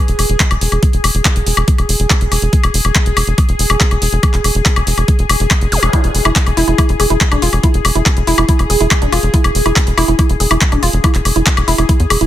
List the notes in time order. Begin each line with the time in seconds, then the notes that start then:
Already playing: G#4
0.08 E1, closed hi-hat
0.19 E1, open hi-hat, high woodblock
0.29 E1, closed hi-hat
0.40 kick, clap, closed hi-hat
0.51 E1, closed hi-hat, high woodblock
0.61 E1, open hi-hat
0.72 E1, closed hi-hat, high woodblock
0.83 kick, closed hi-hat
0.93 E1, closed hi-hat
1.04 E1, open hi-hat, high woodblock
1.15 E1, closed hi-hat
1.25 kick, clap, closed hi-hat, high woodblock
1.36 E1, closed hi-hat
1.46 E1, open hi-hat
1.57 E1, closed hi-hat, high woodblock
1.68 kick, closed hi-hat
1.78 E1, closed hi-hat, high woodblock
1.89 E1, open hi-hat
2.00 E1, closed hi-hat
2.10 kick, clap, closed hi-hat, high woodblock
2.21 E1, closed hi-hat
2.32 E1, open hi-hat, high woodblock
2.42 E1, closed hi-hat
2.53 kick, closed hi-hat
2.64 E1, closed hi-hat, high woodblock
2.74 E1, open hi-hat
2.85 E1, closed hi-hat, high woodblock
2.95 kick, clap, closed hi-hat
3.06 E1, closed hi-hat
3.17 E1, open hi-hat, high woodblock
3.27 E1, closed hi-hat
3.38 kick, closed hi-hat, high woodblock
3.49 E1, closed hi-hat
3.59 E1, open hi-hat
3.70 E1, closed hi-hat, high woodblock
3.81 kick, clap, closed hi-hat
3.91 E1, closed hi-hat, high woodblock
4.02 E1, open hi-hat
4.12 E1, closed hi-hat
4.23 kick, closed hi-hat, high woodblock
4.34 E1, clap, closed hi-hat
4.44 E1, open hi-hat, high woodblock
4.55 E1, closed hi-hat
4.66 kick, clap, closed hi-hat
4.76 E1, closed hi-hat, high woodblock
4.87 E1, open hi-hat
4.98 E1, closed hi-hat, high woodblock
5.08 kick, closed hi-hat
5.19 E1, closed hi-hat
5.29 E1, open hi-hat, high woodblock
5.40 E1, closed hi-hat
5.51 kick, clap, closed hi-hat, high woodblock
5.61 F1, closed hi-hat
5.72 E1, open hi-hat, zap
5.83 E1, closed hi-hat, high woodblock
5.93 E4, kick, closed hi-hat, high woodblock
6.04 E1, closed hi-hat
6.15 E1, open hi-hat
6.25 E1 E4, closed hi-hat, high woodblock
6.36 kick, clap, closed hi-hat
6.46 E1, closed hi-hat, high woodblock
6.57 E1 E4, open hi-hat
6.68 E1 E4, closed hi-hat
6.78 E4, kick, closed hi-hat, high woodblock
6.89 E1, closed hi-hat
7.00 E1 G#4, open hi-hat, high woodblock
7.10 E1 E4, closed hi-hat
7.21 kick, clap, closed hi-hat
7.32 E1 D4, closed hi-hat, high woodblock
7.42 E1 F4, open hi-hat
7.53 E1, closed hi-hat, high woodblock
7.63 E4, kick, closed hi-hat
7.74 E1, closed hi-hat
7.85 E1, open hi-hat, high woodblock
7.95 E1 E4, closed hi-hat
8.06 kick, clap, closed hi-hat, high woodblock
8.17 E1, closed hi-hat
8.27 E1 E4, open hi-hat
8.38 E1 E4, closed hi-hat, high woodblock
8.49 E4, kick, closed hi-hat
8.59 E1, closed hi-hat, high woodblock
8.70 E1 G#4, open hi-hat
8.81 E1 E4, closed hi-hat
8.91 kick, clap, closed hi-hat, high woodblock
9.02 E1 D4, closed hi-hat
9.12 E1 F4, open hi-hat, high woodblock
9.23 E1, closed hi-hat
9.34 E4, kick, closed hi-hat
9.44 E1, closed hi-hat, high woodblock
9.55 E1, open hi-hat
9.66 E1 E4, closed hi-hat, high woodblock
9.76 kick, clap, closed hi-hat
9.87 E1, closed hi-hat
9.98 E1 E4, open hi-hat, high woodblock
10.08 E1 E4, closed hi-hat
10.19 E4, kick, closed hi-hat, high woodblock
10.29 E1, closed hi-hat
10.40 E1 G#4, open hi-hat
10.51 E1 E4, closed hi-hat, high woodblock
10.61 kick, clap, closed hi-hat
10.72 E1 D4, closed hi-hat, high woodblock
10.83 E1 F4, open hi-hat
10.93 E1, closed hi-hat
11.04 E4, kick, closed hi-hat, high woodblock
11.15 E1, clap, closed hi-hat
11.25 E1, open hi-hat, high woodblock
11.36 E1 E4, closed hi-hat
11.46 kick, clap, closed hi-hat
11.57 E1, closed hi-hat, high woodblock
11.68 E1 E4, open hi-hat
11.78 E1 E4, closed hi-hat, high woodblock
11.89 E4, kick, closed hi-hat
12.00 E2, closed hi-hat
12.10 E1 G#4, open hi-hat, high woodblock
12.21 D1 E4, closed hi-hat